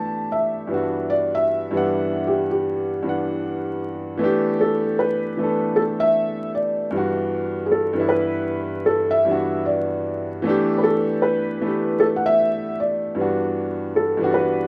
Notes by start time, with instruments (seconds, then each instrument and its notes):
Already playing: upright piano E3 A3 B3 D4 G4, felt piano A5
0.32 felt piano E5
0.67 upright piano G2 E3 G3 B3
0.73 upright piano D4 F#4
1.10 felt piano D5
1.35 felt piano E5
1.71 upright piano G2 E3 G3 B3
1.76 upright piano D4 F#5
2.27 felt piano G4
2.51 felt piano G4
3.03 upright piano G2 E3 G3 B3
3.08 upright piano D4 F#5
4.18 upright piano E3 A3 B3
4.23 upright piano D4 G4
4.61 felt piano A4
4.99 felt piano B4
5.37 upright piano E3 A3 B3
5.42 upright piano D4 A4
5.76 felt piano A4
6.00 felt piano E5
6.55 felt piano D5
6.91 upright piano G2 E3 G3
6.95 upright piano B3 D4 F#4
7.66 felt piano G#4
7.72 felt piano A4
7.93 upright piano G2 E3 G3
7.97 upright piano B3 D4 E4
8.09 felt piano B4
8.86 felt piano A4
9.11 felt piano E5
9.25 upright piano G2 E3 G3 B3
9.30 upright piano D4 F#4
9.66 felt piano D5
10.42 upright piano E3 A3 B3
10.47 upright piano D4 G4
10.78 felt piano B4
10.83 felt piano A4
11.22 felt piano B4
11.60 upright piano E3 A3 B3
11.65 upright piano D4 G4
12.00 felt piano A4
12.16 felt piano F#5
12.26 felt piano E5
12.80 felt piano D5
13.15 upright piano G2 E3 G3 B3
13.20 upright piano D4 F#4
13.96 felt piano A4
14.17 upright piano G2 E3 G3
14.21 upright piano B3 D4 F#4
14.34 felt piano B4